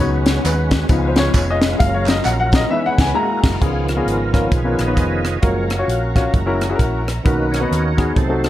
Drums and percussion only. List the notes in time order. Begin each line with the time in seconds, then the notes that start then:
0.00 tambourine
0.26 snare, closed hi-hat, tambourine
0.45 clap, closed hi-hat, tambourine
0.71 kick, snare, closed hi-hat, tambourine
0.89 kick, closed hi-hat, tambourine
1.16 snare, closed hi-hat, tambourine
1.34 kick, clap, closed hi-hat, tambourine
1.62 snare, closed hi-hat, tambourine
1.80 kick, closed hi-hat, tambourine
2.06 snare, clap, closed hi-hat, tambourine
2.25 clap, closed hi-hat, tambourine
2.52 kick, snare, closed hi-hat, tambourine
2.98 kick, snare, crash
3.44 kick, snare, crash
3.62 kick, closed hi-hat
3.88 cross-stick, closed hi-hat
4.08 closed hi-hat
4.34 kick, cross-stick, closed hi-hat
4.52 kick, closed hi-hat
4.79 cross-stick, closed hi-hat
4.97 kick, closed hi-hat
5.25 cross-stick, closed hi-hat
5.43 kick, closed hi-hat
5.70 cross-stick, closed hi-hat
5.89 closed hi-hat
6.16 kick, cross-stick, closed hi-hat
6.34 kick, closed hi-hat
6.61 cross-stick, closed hi-hat
6.79 kick, closed hi-hat
7.08 cross-stick, closed hi-hat
7.26 kick, closed hi-hat
7.54 cross-stick, closed hi-hat
7.73 closed hi-hat
7.98 kick, cross-stick, closed hi-hat
8.16 kick, closed hi-hat
8.44 cross-stick, closed hi-hat